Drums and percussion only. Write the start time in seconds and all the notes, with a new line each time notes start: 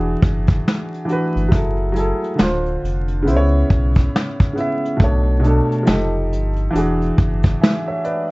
0.22 kick, closed hi-hat
0.47 kick, closed hi-hat
0.68 snare, closed hi-hat
0.94 closed hi-hat
1.09 closed hi-hat
1.37 closed hi-hat
1.52 kick, closed hi-hat
1.96 closed hi-hat
2.24 closed hi-hat
2.39 snare, closed hi-hat
2.66 closed hi-hat
2.85 closed hi-hat
3.08 closed hi-hat
3.27 closed hi-hat
3.70 kick, closed hi-hat
3.95 kick, closed hi-hat
4.16 snare, closed hi-hat
4.40 kick
4.57 closed hi-hat
4.85 closed hi-hat
5.00 kick, closed hi-hat
5.44 closed hi-hat
5.72 closed hi-hat
5.87 snare, closed hi-hat
6.33 closed hi-hat
6.56 closed hi-hat
6.75 closed hi-hat
7.02 closed hi-hat
7.18 kick, closed hi-hat
7.43 kick, closed hi-hat
7.63 snare, closed hi-hat
8.05 closed hi-hat